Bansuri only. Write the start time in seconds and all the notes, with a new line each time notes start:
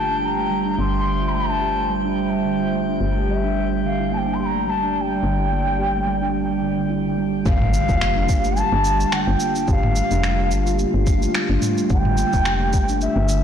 Already playing: A5
0.24 A#5
0.79 C6
1.35 A5
3.29 E5
3.85 F5
4.13 A5
4.17 G5
4.34 C6
4.41 C6
4.45 A#5
4.69 A5
4.97 G5 A5
7.47 F5
8.58 A5
9.13 G5
9.68 F5 G5
11.91 G5
13.02 E5